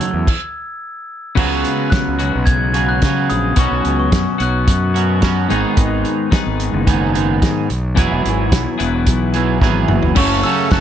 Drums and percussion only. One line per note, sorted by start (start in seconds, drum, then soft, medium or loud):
0.01 closed hi-hat medium
0.27 kick medium
0.27 crash medium
1.37 kick loud
1.37 crash medium
1.65 closed hi-hat medium
1.92 kick loud
1.92 snare loud
1.92 closed hi-hat medium
2.19 closed hi-hat medium
2.47 kick loud
2.47 closed hi-hat medium
2.74 closed hi-hat medium
3.02 kick medium
3.02 snare medium
3.02 closed hi-hat medium
3.30 closed hi-hat medium
3.56 kick loud
3.56 closed hi-hat loud
3.85 closed hi-hat medium
4.12 kick loud
4.12 snare loud
4.12 closed hi-hat loud
4.40 closed hi-hat medium
4.68 kick medium
4.68 closed hi-hat loud
4.96 closed hi-hat medium
5.22 kick medium
5.22 snare loud
5.22 closed hi-hat medium
5.50 closed hi-hat medium
5.77 kick loud
5.77 closed hi-hat medium
6.05 closed hi-hat medium
6.32 kick loud
6.32 snare loud
6.32 closed hi-hat medium
6.60 closed hi-hat medium
6.87 kick loud
6.87 closed hi-hat medium
7.15 closed hi-hat medium
7.42 kick medium
7.42 snare medium
7.42 closed hi-hat medium
7.70 closed hi-hat medium
7.97 kick loud
7.97 closed hi-hat medium
8.26 closed hi-hat medium
8.52 kick loud
8.52 snare loud
8.52 closed hi-hat loud
8.80 closed hi-hat medium
9.07 kick loud
9.07 closed hi-hat loud
9.34 closed hi-hat medium
9.61 kick loud
9.61 snare medium
9.88 mid tom medium
10.03 floor tom medium
10.16 kick loud
10.16 crash loud
10.43 open hi-hat medium
10.71 kick loud
10.71 snare loud
10.71 open hi-hat medium